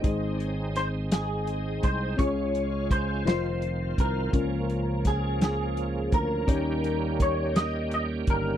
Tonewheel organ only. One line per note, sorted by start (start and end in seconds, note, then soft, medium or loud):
0.04 2.17 G#3 soft
0.04 2.17 C4 soft
0.04 2.17 D#4 medium
2.18 3.25 G#3 medium
2.18 3.25 C#4 soft
2.18 4.31 F4 medium
3.26 4.32 D#3 soft
3.26 6.45 F3 soft
3.26 4.33 C4 soft
4.33 8.57 A#3 soft
4.33 8.57 C#4 medium
6.47 8.57 D#3 medium
6.47 8.57 G3 medium
6.47 8.57 G4 medium